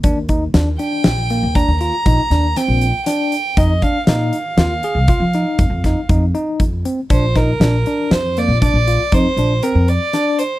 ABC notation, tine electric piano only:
X:1
M:7/4
L:1/8
Q:1/4=119
K:Bb
V:1 name="Tine electric piano"
D E D D2 B, D F E D C2 D2 | E D E2 F _A F E2 E E E2 C | D E D D2 B, D F E D C2 D2 |]